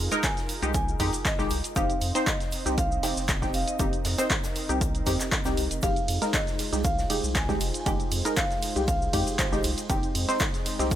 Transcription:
Already playing: D#4 F4 G#4 A#4 A#5
0.11 G#3 D#4 A#4, closed hi-hat, shaker
0.17 A#5
0.23 G#5, kick, snare, clap, closed hi-hat, shaker
0.37 snare, closed hi-hat, shaker
0.49 open hi-hat, shaker
0.62 C2 G#3 D#4 G4, closed hi-hat, shaker
0.74 G#5, kick, closed hi-hat, shaker
0.88 shaker
0.99 F2 G#3 D#4 G4, kick, open hi-hat, shaker
1.13 closed hi-hat, shaker
1.25 D#5, kick, snare, clap, closed hi-hat, shaker
1.39 G#1 G#3 D#4 G4, snare, shaker
1.50 C2, open hi-hat, shaker
1.64 closed hi-hat, shaker
1.76 F1 C4 D#4 G4 C5 D#5 F5, kick, closed hi-hat, shaker
1.90 closed hi-hat, shaker
2.01 F2, open hi-hat, shaker
2.15 C4 D#4 C5, snare, closed hi-hat, shaker
2.26 D#5, kick, snare, clap, closed hi-hat, shaker
2.40 snare, closed hi-hat, shaker
2.52 open hi-hat, shaker
2.65 C2 C4 D#4 G4, snare, closed hi-hat, shaker
2.78 F5, kick, closed hi-hat, shaker
2.92 shaker
3.03 F1 C4 D#4 G4 G5, snare, open hi-hat, shaker
3.17 F1, snare, shaker
3.28 kick, snare, clap, closed hi-hat, shaker
3.42 C4 D#4 G4, kick, snare, shaker
3.54 F1 F5, open hi-hat, shaker
3.68 D#5, closed hi-hat, shaker
3.79 F1 C4 D#4 G4 A#4, kick, closed hi-hat, shaker
3.93 closed hi-hat, shaker
4.05 F2, snare, open hi-hat, shaker
4.18 C4 D#4 C5, snare, closed hi-hat, shaker
4.30 kick, snare, clap, closed hi-hat, shaker
4.44 snare, closed hi-hat, shaker
4.56 open hi-hat, shaker
4.69 C2 C4 D#4 G4, closed hi-hat, shaker
4.81 kick, closed hi-hat, shaker
4.95 closed hi-hat, shaker
5.06 F2 C4 D#4 G4, kick, snare, open hi-hat, shaker
5.20 snare, clap, closed hi-hat, shaker
5.32 kick, snare, clap, closed hi-hat, shaker
5.45 C2 C4 D#4 G4, snare, closed hi-hat, shaker
5.46 shaker
5.57 C2, open hi-hat, shaker
5.71 F1, closed hi-hat, shaker
5.82 F1 G#3 D#4 F4 G4 G#4 C5 F5, kick, closed hi-hat, ride, shaker
5.83 shaker
5.96 closed hi-hat, shaker
6.08 F2, open hi-hat, ride, shaker
6.22 G#3 D#4 A#4, snare, closed hi-hat, shaker
6.34 D#5, kick, snare, clap, closed hi-hat, ride, shaker
6.47 snare, closed hi-hat, shaker
6.59 snare, open hi-hat, ride, shaker
6.73 C2 G#3 D#4 G4, snare, closed hi-hat, shaker
6.84 F5, kick, closed hi-hat, ride, shaker
6.98 snare, shaker
7.10 F1 G#3 D#4 G4, open hi-hat, ride, shaker
7.24 C2, shaker
7.35 G#5, kick, snare, clap, closed hi-hat, ride, shaker
7.49 G#3 D#4 G4, kick, snare, shaker
7.60 F1, open hi-hat, ride, shaker
7.74 closed hi-hat, shaker
7.80 G#5
7.86 F1 G#3 D#4 G4 G5, kick, closed hi-hat, ride, shaker
8.00 closed hi-hat, shaker
8.12 F2, open hi-hat, ride, shaker
8.25 G#3 D#4 A#4, closed hi-hat, shaker
8.37 F5, kick, snare, clap, closed hi-hat, ride, shaker
8.51 snare, closed hi-hat, shaker
8.62 open hi-hat, ride, shaker
8.76 C2 G#3 D#4 G4, closed hi-hat, shaker
8.88 F5, kick, closed hi-hat, ride, shaker
9.02 shaker
9.13 F2 G#3 D#4 G4, kick, open hi-hat, ride, shaker
9.27 closed hi-hat, shaker
9.38 C5, kick, snare, clap, closed hi-hat, ride, shaker
9.52 G#1 G#3 D#4 G4, snare, shaker
9.64 C2, open hi-hat, ride, shaker
9.78 closed hi-hat, shaker
9.89 F1 C4 D#4 G4 D#5, kick, closed hi-hat, ride, shaker
10.03 closed hi-hat, shaker
10.15 F2, open hi-hat, ride, shaker
10.28 C4 D#4 C5, snare, closed hi-hat, shaker
10.40 kick, snare, clap, closed hi-hat, ride, shaker
10.54 snare, closed hi-hat, shaker
10.66 snare, open hi-hat, ride, shaker
10.79 C2 C4 D#4 G4, snare, closed hi-hat, shaker
10.91 kick, closed hi-hat, ride, shaker

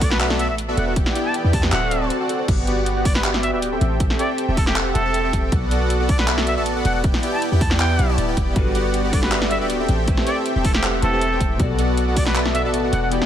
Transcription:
Already playing: B1 A3 B3 D4 F#4 A4 D5 F#5
0.01 A4 D5, kick, open hi-hat
0.11 B4, clap, snare
0.20 B3 F#4 A4 B4 D5 E5 F#5, clap, closed hi-hat
0.30 snare
0.39 E5 F#5, closed hi-hat
0.49 A1 E5
0.58 closed hi-hat
0.68 B3 F#4 A4 D5 E5
0.77 E1 A4 F#5, closed hi-hat
0.87 B4 F#5
0.96 E3 B3 D4 E4 G4 D5 E5 G5, kick, closed hi-hat
1.06 snare
1.15 B3 E4 G4 D5 E5 G5, closed hi-hat
1.25 A5
1.34 closed hi-hat
1.44 E2 B3 E4 G4 D5 G5
1.53 G4 A5, kick, open hi-hat
1.63 B4, clap, snare
1.72 D1 D3 C4 F#4 A4 D5 E5 F#5, clap, closed hi-hat
1.91 F#5, closed hi-hat
2.01 C4 F#4 A4 D5 A5
2.10 closed hi-hat
2.20 C4 F#4 A4 D5 F#5
2.29 A4, closed hi-hat
2.39 C5
2.48 G1 B3 F#4 G4 D5 F#5, kick, closed hi-hat, crash
2.67 B3 F#4 G4 D5 F#5, closed hi-hat
2.86 closed hi-hat
2.96 B3 F#4 G4 D5 F#5
3.05 D5, kick, open hi-hat
3.15 B4, clap, snare
3.24 B3 F#4 G4 B4 D5 E5, clap, closed hi-hat
3.34 snare
3.43 E5, closed hi-hat
3.53 D1 B3 F#4 G4 D5 E5 G5
3.62 closed hi-hat
3.72 C4 G4 A4 E5 G5
3.81 A1, closed hi-hat
4.00 C4 G4 A4 E5 G5, kick, closed hi-hat
4.10 snare
4.19 C4 G4 A4 D5 E5 G5, closed hi-hat
4.38 closed hi-hat
4.48 E1 C4 G4 A4 E5 G5
4.57 A4, kick, open hi-hat
4.67 G4, clap, snare
4.76 C4 G4 A4 E5 F#5, clap, closed hi-hat
4.95 E1 A4, closed hi-hat
5.05 C4 G4 A4 E5 A5
5.14 closed hi-hat
5.24 C4 G4 A4 E5 G5
5.33 E1, kick, closed hi-hat
5.52 B1 B3 F#4 A4 D5 F#5, kick, closed hi-hat
5.71 B3 F#4 A4 D5 F#5, closed hi-hat
5.90 closed hi-hat
6.00 B3 F#4 A4 D5 F#5
6.09 D5, kick, open hi-hat
6.19 B4, clap, snare
6.28 B3 F#4 A4 B4 D5 E5, clap, closed hi-hat
6.38 snare
6.47 E5, closed hi-hat
6.57 A1 B3 F#4 A4 D5 E5 A5
6.66 closed hi-hat
6.76 B3 F#4 A4 D5 F#5
6.85 E1 F#5, closed hi-hat
6.95 F#5
7.04 B3 E4 G4 D5 G5, kick, closed hi-hat
7.14 snare
7.23 B3 E4 G4 D5 G5, closed hi-hat
7.33 A5
7.42 closed hi-hat
7.52 E2 B3 E4 G4 D5 G5
7.61 A5, kick, open hi-hat
7.71 clap, snare
7.80 B3 E4 G4 D5 F#5 G5, clap, closed hi-hat
7.99 B1, closed hi-hat
8.09 B3 E4 G4 D5 A5
8.18 D1, closed hi-hat
8.28 B3 E4 G4 D5 G5
8.37 E1, kick, closed hi-hat
8.54 G1 G3 B3 D4 F#4 G4 A4 B4 D5 F#5, kick, closed hi-hat
8.75 B3 F#4 G4 D5 F#5, closed hi-hat
8.94 closed hi-hat
9.04 B3 F#4 G4 D5 F#5
9.12 G3 D4 F#4 A4 B4 D5, kick, open hi-hat
9.23 B4, clap, snare
9.32 B3 F#4 G4 B4 D5 E5, clap, closed hi-hat
9.42 snare
9.50 G3 D4 F#4 A4 D5 E5, closed hi-hat
9.60 D1 G3 B3 D4 F#4 G4 A4 D5 E5 G5
9.70 closed hi-hat
9.80 C4 G4 A4 E5 G5
9.89 A1, closed hi-hat
10.06 A3 C4 E4 G4 A4 B4 C5 E5 G5, kick, closed hi-hat
10.17 snare
10.27 C4 G4 A4 D5 E5 G5, closed hi-hat
10.46 closed hi-hat
10.56 E1 C4 G4 A4 E5 G5
10.64 A3 E4 G4 A4 B4 C5, kick, open hi-hat
10.75 G4, clap, snare
10.83 C4 G4 A4 E5 F#5, clap, closed hi-hat
11.02 E1 A3 E4 G4 A4 B4 C5, closed hi-hat
11.11 A3 C4 E4 G4 A4 B4 E5 A5
11.15 C5
11.21 closed hi-hat
11.32 C4 G4 A4 E5 G5
11.41 E1, kick, closed hi-hat
11.58 B1 B2 B3 F#4 A4 D5 F#5, kick, closed hi-hat
11.62 D5
11.79 B3 F#4 A4 D5 F#5, closed hi-hat
11.97 closed hi-hat
12.08 B3 F#4 A4 D5 F#5
12.16 B2 B3 F#4 A4 D5, kick, open hi-hat
12.26 B4, clap, snare
12.36 B3 F#4 A4 B4 D5 E5, clap, closed hi-hat
12.46 snare
12.54 B2 B3 F#4 A4 E5, closed hi-hat
12.62 A1 B2 B3 F#4 A4 D5 E5 A5
12.67 E5
12.74 closed hi-hat
12.84 B3 F#4 A4 D5 F#5
12.93 E1 F#5, closed hi-hat
13.02 F#5
13.10 E3 B3 E4 F#4 G4 D5 G5, closed hi-hat
13.14 D5
13.22 snare

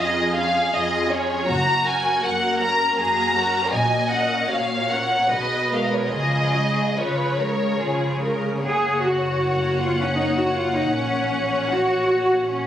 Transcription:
Already playing: G#4
0.00 F2 F4 G#4 D#5
0.35 C#4 F4 F5
0.72 F2 F4 G#4 D#5
1.10 C#4 F4 C#5
1.48 F#1 F#2 A#3 F#4 A#5
1.86 C#4 A#4 G#5
2.21 F#2 A#3 F#4 A#4 F#5
2.59 C#4 A#4 A#5
2.97 F#2 A#3 F#4 G#4 A#5
3.36 C#4 F#4 A#4
3.72 A#1 A#2 A#3 F#4 D#5 G#5
4.11 C#4 A#4 F#5
4.49 A#2 A#3 F#4 C#5 F5
4.89 C#4 A#4 F#5
5.29 B1 B2 B3 G#4 B4 D#5
5.70 G#3 A#4 B4
5.74 F5
5.82 D#5
5.94 C#5
6.05 D#5
6.10 C#2 F3 F4 D#5
6.14 C#3 G#4
6.53 G#3 G#4
6.96 C#3 F3 F4 B4 C#5
7.38 G#3 G#4 A#4
7.80 C#3 F3 F4 G#4
8.21 G#3 G#4 A#4
8.62 F#1 A#3 G#4 C#5 F#5
9.03 F#4
9.79 F4
10.00 C#4
10.18 D#4
10.37 F#4
10.54 F4
10.73 D#4
10.91 A#1 C#4
11.72 F#4
12.47 C#4

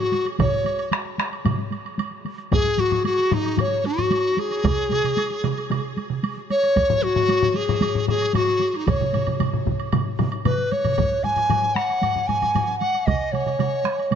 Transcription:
0.00 F#4
0.12 taiko high, high woodblock
0.25 taiko high, high woodblock
0.39 C#5, taiko, taiko low-mid, taiko mid, taiko high, high woodblock
0.52 taiko high
0.66 taiko high, high woodblock
0.79 taiko high, high woodblock
0.91 taiko rim, taiko high, high woodblock
1.05 taiko high
1.18 taiko rim, taiko high, high woodblock
1.32 taiko high, high woodblock
1.45 taiko low-mid, taiko mid, taiko high, high woodblock
1.58 taiko high
1.72 taiko high, high woodblock
1.85 taiko high, high woodblock
1.98 taiko high, high woodblock
2.11 taiko high
2.25 taiko high, high woodblock
2.38 taiko high, high woodblock
2.52 G#4, taiko, taiko low-mid, taiko high, high woodblock
2.65 taiko high
2.78 F#4, taiko low-mid, taiko high, high woodblock
2.91 taiko low-mid, taiko high, high woodblock
3.04 F#4, taiko high, high woodblock
3.18 taiko high
3.31 D#4, taiko low-mid, taiko high, high woodblock
3.44 taiko high, high woodblock
3.57 C#5, taiko low-mid, taiko high, high woodblock
3.84 F#4, taiko high, high woodblock
3.98 taiko low-mid, taiko high, high woodblock
4.11 taiko high, high woodblock
4.24 taiko high
4.37 G#4, taiko high, high woodblock
4.50 taiko high, high woodblock
4.64 taiko, taiko mid, taiko high, high woodblock
4.78 taiko high
4.90 taiko mid, taiko high, high woodblock
5.04 taiko mid, taiko high, high woodblock
5.17 taiko high, high woodblock
5.30 taiko high
5.44 taiko mid, taiko high, high woodblock
5.58 taiko high, high woodblock
5.70 taiko mid, taiko high, high woodblock
5.97 taiko high, high woodblock
6.10 taiko mid, taiko high
6.23 taiko high, high woodblock
6.37 taiko high
6.50 C#5, taiko high, high woodblock
6.63 taiko high, high woodblock
6.76 taiko, taiko high, high woodblock
6.89 taiko low-mid, taiko high
7.02 F#4, taiko high
7.15 taiko low-mid, taiko high
7.29 taiko high, high woodblock
7.42 taiko low-mid, taiko high
7.55 G#4, taiko high, high woodblock
7.68 taiko low-mid, taiko high, high woodblock
7.81 taiko low-mid, taiko high, high woodblock
7.95 taiko low-mid
8.08 G#4, taiko low-mid, taiko high, high woodblock
8.21 taiko high, high woodblock
8.33 F#4, taiko low-mid, taiko high, high woodblock
8.47 taiko high
8.60 taiko high, high woodblock
8.71 F#4, taiko high, high woodblock
8.76 D#4
8.87 C#5, taiko, taiko low-mid, taiko mid, taiko high, high woodblock
8.99 taiko low-mid, taiko mid, taiko high
9.13 taiko low-mid, taiko mid, taiko high, high woodblock
9.27 taiko low-mid, taiko mid, taiko high, high woodblock
9.40 taiko low-mid, taiko mid, taiko high, high woodblock
9.53 taiko low-mid, taiko mid
9.67 taiko, taiko low-mid, taiko mid, taiko high
9.80 taiko high, high woodblock
9.92 taiko low-mid, taiko mid, taiko high, high woodblock
10.19 taiko low-mid, taiko mid, taiko high, high woodblock
10.32 high woodblock
10.45 B4, taiko low-mid, taiko mid, taiko high, high woodblock
10.59 taiko high
10.71 C#5, taiko high, high woodblock
10.84 taiko low-mid, taiko mid, taiko high, high woodblock
10.98 taiko, taiko low-mid, taiko high, high woodblock
11.11 taiko high
11.24 G#5, taiko low-mid, taiko high, high woodblock
11.36 taiko low-mid, taiko high, high woodblock
11.50 taiko low-mid, taiko high, high woodblock
11.63 taiko high
11.75 F#5, taiko rim, taiko high, high woodblock
11.89 taiko high, high woodblock
12.02 taiko low-mid, taiko high, high woodblock
12.15 taiko low-mid, taiko high
12.27 G#5, taiko low-mid, taiko high, high woodblock
12.42 taiko low-mid, taiko high, high woodblock
12.55 taiko low-mid, taiko high, high woodblock
12.68 taiko high
12.79 F#5, taiko high, high woodblock
12.94 taiko high, high woodblock
13.06 D#5, taiko, taiko mid, taiko high, high woodblock
13.20 taiko high
13.32 C#5, taiko mid, taiko high, high woodblock
13.46 taiko mid, taiko high, high woodblock
13.59 taiko mid, taiko high, high woodblock
13.73 taiko high
13.85 taiko rim, taiko high, high woodblock
13.99 taiko high, high woodblock
14.11 taiko mid, taiko high, high woodblock

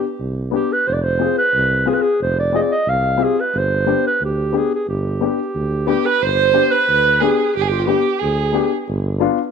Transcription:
Already playing: G4
0.19 C2
0.51 B3 D4 G4
0.72 B4
0.88 F1 C5
0.93 D5
1.03 C5
1.19 C4 F4 G#4
1.38 B4
1.54 C2
1.86 C4 F4 G#4
1.93 B4
2.02 G#4
2.21 F1 C5
2.39 D5
2.53 C4 F4 G#4 D#5
2.59 D5
2.71 D#5
2.87 C2 F5
3.17 C4 F4 G4
3.23 G#4
3.40 B4
3.54 G1
3.58 C5
3.86 B3 D4 G4
4.07 B4
4.21 D2 G4
4.52 B3 D4 G4
4.57 G#4
4.75 G#4
4.87 G1 G4
5.21 B3 D4 G4
5.55 D2
5.87 B3 D4 G4
6.05 B4
6.22 G1 C5
6.52 B3 D4 G4
6.71 B4
6.89 D2
7.20 B3 D4 G4 G#4
7.55 G1 G4
7.61 G#4
7.68 F4 G4
7.87 B3 D4 G4
8.19 D2 G#4
8.52 B3 D4 G4
8.88 G1
9.19 B3 D4 F4

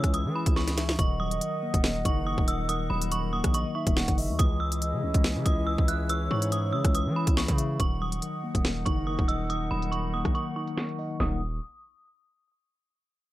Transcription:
Already playing: E3 G#3 C#4 E4 G#4 C#5 E5 E6
0.04 C#2, kick, cross-stick, closed hi-hat
0.14 E3 D#6, closed hi-hat
0.25 E3
0.35 E4 B5
0.46 C#2, kick, closed hi-hat
0.56 E3 C#6, snare
0.68 snare, closed hi-hat
0.77 E5, snare, closed hi-hat
0.89 snare
0.99 D#1 D#3 D#4 A#4 D#5 F#5 C#6, kick, closed hi-hat
1.20 F#3 D#6
1.31 closed hi-hat
1.41 D#3, closed hi-hat
1.63 A#3
1.74 D#1, kick, closed hi-hat
1.84 D#3, snare
2.05 F#1 D#4 C#6, kick, closed hi-hat
2.27 D#3 D#6
2.38 D#1, kick
2.48 D#5 E6, closed hi-hat
2.69 D#3 F#5 D#6, closed hi-hat
2.90 D#1 F#3 B5
3.02 closed hi-hat
3.12 D#3 C#6, closed hi-hat
3.33 A#3 D#6
3.44 A#1, kick, cross-stick, closed hi-hat
3.54 D#3 D#5 C#6, closed hi-hat
3.75 D#4 E5 C#6
3.87 D#1, kick, closed hi-hat
3.96 D#3 F#5, snare
4.08 F#1, kick, closed hi-hat
4.18 D#5 E5, open hi-hat
4.29 D#2
4.39 C#2 E3 C#4 E4 G#4 D#5 D#6, kick, closed hi-hat
4.60 G#3 E6
4.72 closed hi-hat
4.82 E3, closed hi-hat
4.93 C#3
5.03 C#2 C#4
5.14 C#2, kick, closed hi-hat
5.24 E3, snare
5.36 C#3
5.46 C#2 E4 D#6, kick, closed hi-hat
5.67 E3 E6
5.78 C#2, kick
5.88 E5 F#6, closed hi-hat
6.09 E3 C#5 E6, closed hi-hat
6.31 G#2 G#3 C#6
6.42 closed hi-hat
6.52 E3 D#6, closed hi-hat
6.73 C#3 C#4 E6
6.85 C#2, kick, cross-stick, closed hi-hat
6.95 E3 D#6, closed hi-hat
7.06 E3
7.16 E4 B5
7.27 C#2, kick, closed hi-hat
7.37 E3 C#6, snare
7.48 C#3, kick, closed hi-hat
7.58 E5, closed hi-hat
7.80 D#1 D#3 D#4 A#4 F#5 C#6, kick, closed hi-hat
8.01 F#3 D#6
8.12 closed hi-hat
8.22 D#3, closed hi-hat
8.44 A#3
8.55 D#1, kick, closed hi-hat
8.65 D#3, snare
8.86 F#1 D#4 C#6, kick, closed hi-hat
9.07 D#3 D#6
9.19 D#1, kick
9.28 D#5 E6, closed hi-hat
9.50 D#3 D#6, closed hi-hat
9.71 D#1 F#3 B5
9.82 closed hi-hat
9.92 D#3 C#6, closed hi-hat
10.14 A#3 D#6
10.25 A#1, kick, cross-stick, closed hi-hat
10.35 D#3 C#6, closed hi-hat
10.56 D#4 C#6
10.68 closed hi-hat
10.77 D#3, snare
10.89 closed hi-hat
10.99 D#5, open hi-hat
11.20 D#1 D#3 F#3 A#3 D#4 A#4 F#5 D#6, snare, floor tom

